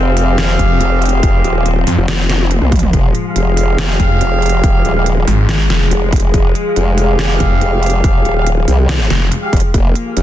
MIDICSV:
0, 0, Header, 1, 6, 480
1, 0, Start_track
1, 0, Key_signature, -4, "minor"
1, 0, Tempo, 425532
1, 1390, Time_signature, 4, 2, 24, 8
1, 11534, End_track
2, 0, Start_track
2, 0, Title_t, "Brass ensemble"
2, 0, Program_c, 0, 61
2, 0, Note_on_c, 0, 67, 99
2, 0, Note_on_c, 0, 68, 89
2, 0, Note_on_c, 0, 77, 108
2, 1722, Note_off_c, 0, 67, 0
2, 1722, Note_off_c, 0, 68, 0
2, 1722, Note_off_c, 0, 77, 0
2, 1750, Note_on_c, 0, 67, 91
2, 1750, Note_on_c, 0, 68, 80
2, 1750, Note_on_c, 0, 77, 93
2, 1891, Note_off_c, 0, 67, 0
2, 1891, Note_off_c, 0, 68, 0
2, 1891, Note_off_c, 0, 77, 0
2, 3671, Note_on_c, 0, 67, 96
2, 3671, Note_on_c, 0, 68, 87
2, 3671, Note_on_c, 0, 77, 109
2, 5562, Note_off_c, 0, 67, 0
2, 5562, Note_off_c, 0, 68, 0
2, 5562, Note_off_c, 0, 77, 0
2, 5591, Note_on_c, 0, 67, 89
2, 5591, Note_on_c, 0, 68, 80
2, 5591, Note_on_c, 0, 77, 98
2, 5731, Note_off_c, 0, 67, 0
2, 5731, Note_off_c, 0, 68, 0
2, 5731, Note_off_c, 0, 77, 0
2, 7511, Note_on_c, 0, 67, 98
2, 7511, Note_on_c, 0, 68, 88
2, 7511, Note_on_c, 0, 77, 104
2, 9402, Note_off_c, 0, 67, 0
2, 9402, Note_off_c, 0, 68, 0
2, 9402, Note_off_c, 0, 77, 0
2, 9431, Note_on_c, 0, 67, 87
2, 9431, Note_on_c, 0, 68, 81
2, 9431, Note_on_c, 0, 77, 98
2, 9571, Note_off_c, 0, 67, 0
2, 9571, Note_off_c, 0, 68, 0
2, 9571, Note_off_c, 0, 77, 0
2, 10630, Note_on_c, 0, 67, 88
2, 10630, Note_on_c, 0, 77, 93
2, 10631, Note_on_c, 0, 68, 76
2, 10771, Note_off_c, 0, 67, 0
2, 10771, Note_off_c, 0, 68, 0
2, 10771, Note_off_c, 0, 77, 0
2, 11350, Note_on_c, 0, 67, 96
2, 11350, Note_on_c, 0, 77, 107
2, 11351, Note_on_c, 0, 68, 87
2, 11534, Note_off_c, 0, 67, 0
2, 11534, Note_off_c, 0, 68, 0
2, 11534, Note_off_c, 0, 77, 0
2, 11534, End_track
3, 0, Start_track
3, 0, Title_t, "String section"
3, 0, Program_c, 1, 48
3, 0, Note_on_c, 1, 53, 80
3, 0, Note_on_c, 1, 60, 91
3, 3289, Note_off_c, 1, 60, 0
3, 3309, Note_on_c, 1, 56, 89
3, 10969, Note_off_c, 1, 56, 0
3, 10988, Note_on_c, 1, 58, 92
3, 11534, Note_off_c, 1, 53, 0
3, 11534, Note_off_c, 1, 58, 0
3, 11534, End_track
4, 0, Start_track
4, 0, Title_t, "Detuned saw bass"
4, 0, Program_c, 2, 39
4, 669, Note_on_c, 2, 29, 97
4, 890, Note_off_c, 2, 29, 0
4, 2109, Note_on_c, 2, 41, 97
4, 2212, Note_off_c, 2, 41, 0
4, 4510, Note_on_c, 2, 29, 97
4, 4731, Note_off_c, 2, 29, 0
4, 5950, Note_on_c, 2, 32, 94
4, 6411, Note_off_c, 2, 32, 0
4, 6430, Note_on_c, 2, 29, 97
4, 6651, Note_off_c, 2, 29, 0
4, 8349, Note_on_c, 2, 29, 102
4, 8570, Note_off_c, 2, 29, 0
4, 10271, Note_on_c, 2, 29, 98
4, 10491, Note_off_c, 2, 29, 0
4, 11534, End_track
5, 0, Start_track
5, 0, Title_t, "Wobble bass"
5, 0, Program_c, 3, 39
5, 0, Note_on_c, 3, 29, 98
5, 650, Note_off_c, 3, 29, 0
5, 908, Note_on_c, 3, 29, 98
5, 1370, Note_off_c, 3, 29, 0
5, 1388, Note_on_c, 3, 29, 97
5, 1610, Note_off_c, 3, 29, 0
5, 1628, Note_on_c, 3, 27, 98
5, 2090, Note_off_c, 3, 27, 0
5, 2229, Note_on_c, 3, 29, 99
5, 2931, Note_off_c, 3, 29, 0
5, 2950, Note_on_c, 3, 36, 95
5, 3290, Note_off_c, 3, 36, 0
5, 3308, Note_on_c, 3, 29, 99
5, 3530, Note_off_c, 3, 29, 0
5, 3788, Note_on_c, 3, 29, 101
5, 4490, Note_off_c, 3, 29, 0
5, 4749, Note_on_c, 3, 29, 101
5, 5210, Note_off_c, 3, 29, 0
5, 5229, Note_on_c, 3, 29, 99
5, 5450, Note_off_c, 3, 29, 0
5, 5468, Note_on_c, 3, 27, 96
5, 5930, Note_off_c, 3, 27, 0
5, 6670, Note_on_c, 3, 29, 101
5, 7131, Note_off_c, 3, 29, 0
5, 7149, Note_on_c, 3, 29, 97
5, 7371, Note_off_c, 3, 29, 0
5, 7630, Note_on_c, 3, 29, 99
5, 8331, Note_off_c, 3, 29, 0
5, 8589, Note_on_c, 3, 29, 96
5, 9050, Note_off_c, 3, 29, 0
5, 9069, Note_on_c, 3, 29, 103
5, 9290, Note_off_c, 3, 29, 0
5, 9309, Note_on_c, 3, 27, 98
5, 9770, Note_off_c, 3, 27, 0
5, 9788, Note_on_c, 3, 36, 97
5, 10250, Note_off_c, 3, 36, 0
5, 10749, Note_on_c, 3, 29, 102
5, 10852, Note_off_c, 3, 29, 0
5, 10988, Note_on_c, 3, 29, 98
5, 11210, Note_off_c, 3, 29, 0
5, 11468, Note_on_c, 3, 29, 97
5, 11534, Note_off_c, 3, 29, 0
5, 11534, End_track
6, 0, Start_track
6, 0, Title_t, "Drums"
6, 189, Note_on_c, 9, 46, 98
6, 302, Note_off_c, 9, 46, 0
6, 429, Note_on_c, 9, 38, 119
6, 429, Note_on_c, 9, 42, 80
6, 542, Note_off_c, 9, 38, 0
6, 542, Note_off_c, 9, 42, 0
6, 669, Note_on_c, 9, 36, 58
6, 669, Note_on_c, 9, 42, 54
6, 782, Note_off_c, 9, 36, 0
6, 782, Note_off_c, 9, 42, 0
6, 909, Note_on_c, 9, 42, 77
6, 1022, Note_off_c, 9, 42, 0
6, 1149, Note_on_c, 9, 42, 46
6, 1190, Note_off_c, 9, 42, 0
6, 1190, Note_on_c, 9, 42, 67
6, 1230, Note_off_c, 9, 42, 0
6, 1230, Note_on_c, 9, 42, 80
6, 1342, Note_off_c, 9, 42, 0
6, 1389, Note_on_c, 9, 36, 115
6, 1389, Note_on_c, 9, 42, 82
6, 1501, Note_off_c, 9, 36, 0
6, 1502, Note_off_c, 9, 42, 0
6, 1630, Note_on_c, 9, 42, 50
6, 1742, Note_off_c, 9, 42, 0
6, 1869, Note_on_c, 9, 42, 78
6, 1982, Note_off_c, 9, 42, 0
6, 2109, Note_on_c, 9, 46, 101
6, 2222, Note_off_c, 9, 46, 0
6, 2349, Note_on_c, 9, 38, 115
6, 2349, Note_on_c, 9, 42, 81
6, 2462, Note_off_c, 9, 38, 0
6, 2462, Note_off_c, 9, 42, 0
6, 2589, Note_on_c, 9, 38, 62
6, 2589, Note_on_c, 9, 42, 54
6, 2589, Note_on_c, 9, 48, 62
6, 2702, Note_off_c, 9, 38, 0
6, 2702, Note_off_c, 9, 42, 0
6, 2702, Note_off_c, 9, 48, 0
6, 2711, Note_on_c, 9, 48, 60
6, 2824, Note_off_c, 9, 48, 0
6, 2829, Note_on_c, 9, 42, 81
6, 2829, Note_on_c, 9, 47, 75
6, 2942, Note_off_c, 9, 42, 0
6, 2942, Note_off_c, 9, 47, 0
6, 2951, Note_on_c, 9, 47, 74
6, 3064, Note_off_c, 9, 47, 0
6, 3068, Note_on_c, 9, 36, 103
6, 3069, Note_on_c, 9, 42, 51
6, 3069, Note_on_c, 9, 45, 99
6, 3110, Note_off_c, 9, 42, 0
6, 3110, Note_on_c, 9, 42, 67
6, 3149, Note_off_c, 9, 42, 0
6, 3149, Note_on_c, 9, 42, 80
6, 3181, Note_off_c, 9, 36, 0
6, 3182, Note_off_c, 9, 45, 0
6, 3191, Note_on_c, 9, 45, 86
6, 3262, Note_off_c, 9, 42, 0
6, 3304, Note_off_c, 9, 45, 0
6, 3309, Note_on_c, 9, 36, 117
6, 3310, Note_on_c, 9, 42, 82
6, 3421, Note_off_c, 9, 36, 0
6, 3422, Note_off_c, 9, 42, 0
6, 3549, Note_on_c, 9, 42, 52
6, 3662, Note_off_c, 9, 42, 0
6, 3789, Note_on_c, 9, 42, 82
6, 3902, Note_off_c, 9, 42, 0
6, 4029, Note_on_c, 9, 46, 102
6, 4142, Note_off_c, 9, 46, 0
6, 4269, Note_on_c, 9, 38, 120
6, 4269, Note_on_c, 9, 42, 86
6, 4382, Note_off_c, 9, 38, 0
6, 4382, Note_off_c, 9, 42, 0
6, 4509, Note_on_c, 9, 36, 58
6, 4509, Note_on_c, 9, 42, 56
6, 4622, Note_off_c, 9, 36, 0
6, 4622, Note_off_c, 9, 42, 0
6, 4749, Note_on_c, 9, 42, 82
6, 4862, Note_off_c, 9, 42, 0
6, 4989, Note_on_c, 9, 42, 52
6, 5030, Note_off_c, 9, 42, 0
6, 5030, Note_on_c, 9, 42, 67
6, 5070, Note_off_c, 9, 42, 0
6, 5070, Note_on_c, 9, 42, 83
6, 5182, Note_off_c, 9, 42, 0
6, 5229, Note_on_c, 9, 36, 125
6, 5230, Note_on_c, 9, 42, 82
6, 5342, Note_off_c, 9, 36, 0
6, 5343, Note_off_c, 9, 42, 0
6, 5470, Note_on_c, 9, 42, 53
6, 5583, Note_off_c, 9, 42, 0
6, 5710, Note_on_c, 9, 42, 82
6, 5823, Note_off_c, 9, 42, 0
6, 5951, Note_on_c, 9, 46, 96
6, 6063, Note_off_c, 9, 46, 0
6, 6191, Note_on_c, 9, 38, 123
6, 6191, Note_on_c, 9, 42, 82
6, 6304, Note_off_c, 9, 38, 0
6, 6304, Note_off_c, 9, 42, 0
6, 6431, Note_on_c, 9, 38, 67
6, 6431, Note_on_c, 9, 42, 54
6, 6544, Note_off_c, 9, 38, 0
6, 6544, Note_off_c, 9, 42, 0
6, 6671, Note_on_c, 9, 42, 80
6, 6783, Note_off_c, 9, 42, 0
6, 6910, Note_on_c, 9, 36, 114
6, 6911, Note_on_c, 9, 42, 54
6, 6951, Note_off_c, 9, 42, 0
6, 6951, Note_on_c, 9, 42, 70
6, 6990, Note_off_c, 9, 42, 0
6, 6990, Note_on_c, 9, 42, 86
6, 7022, Note_off_c, 9, 36, 0
6, 7103, Note_off_c, 9, 42, 0
6, 7150, Note_on_c, 9, 36, 127
6, 7150, Note_on_c, 9, 42, 82
6, 7262, Note_off_c, 9, 36, 0
6, 7263, Note_off_c, 9, 42, 0
6, 7391, Note_on_c, 9, 42, 52
6, 7503, Note_off_c, 9, 42, 0
6, 7630, Note_on_c, 9, 42, 82
6, 7743, Note_off_c, 9, 42, 0
6, 7870, Note_on_c, 9, 46, 95
6, 7983, Note_off_c, 9, 46, 0
6, 8109, Note_on_c, 9, 38, 127
6, 8109, Note_on_c, 9, 42, 86
6, 8222, Note_off_c, 9, 38, 0
6, 8222, Note_off_c, 9, 42, 0
6, 8349, Note_on_c, 9, 36, 66
6, 8349, Note_on_c, 9, 42, 58
6, 8462, Note_off_c, 9, 36, 0
6, 8462, Note_off_c, 9, 42, 0
6, 8589, Note_on_c, 9, 42, 82
6, 8702, Note_off_c, 9, 42, 0
6, 8829, Note_on_c, 9, 42, 53
6, 8870, Note_off_c, 9, 42, 0
6, 8870, Note_on_c, 9, 42, 67
6, 8909, Note_off_c, 9, 42, 0
6, 8909, Note_on_c, 9, 42, 81
6, 9022, Note_off_c, 9, 42, 0
6, 9069, Note_on_c, 9, 36, 120
6, 9069, Note_on_c, 9, 42, 81
6, 9182, Note_off_c, 9, 36, 0
6, 9182, Note_off_c, 9, 42, 0
6, 9309, Note_on_c, 9, 42, 53
6, 9422, Note_off_c, 9, 42, 0
6, 9549, Note_on_c, 9, 42, 78
6, 9662, Note_off_c, 9, 42, 0
6, 9789, Note_on_c, 9, 46, 91
6, 9902, Note_off_c, 9, 46, 0
6, 10029, Note_on_c, 9, 38, 125
6, 10029, Note_on_c, 9, 42, 80
6, 10142, Note_off_c, 9, 38, 0
6, 10142, Note_off_c, 9, 42, 0
6, 10269, Note_on_c, 9, 38, 64
6, 10269, Note_on_c, 9, 42, 51
6, 10382, Note_off_c, 9, 38, 0
6, 10382, Note_off_c, 9, 42, 0
6, 10509, Note_on_c, 9, 42, 80
6, 10622, Note_off_c, 9, 42, 0
6, 10749, Note_on_c, 9, 36, 113
6, 10749, Note_on_c, 9, 42, 49
6, 10790, Note_off_c, 9, 42, 0
6, 10790, Note_on_c, 9, 42, 67
6, 10829, Note_off_c, 9, 42, 0
6, 10829, Note_on_c, 9, 42, 77
6, 10862, Note_off_c, 9, 36, 0
6, 10942, Note_off_c, 9, 42, 0
6, 10989, Note_on_c, 9, 36, 115
6, 10989, Note_on_c, 9, 42, 78
6, 11102, Note_off_c, 9, 36, 0
6, 11102, Note_off_c, 9, 42, 0
6, 11229, Note_on_c, 9, 42, 49
6, 11341, Note_off_c, 9, 42, 0
6, 11469, Note_on_c, 9, 42, 77
6, 11534, Note_off_c, 9, 42, 0
6, 11534, End_track
0, 0, End_of_file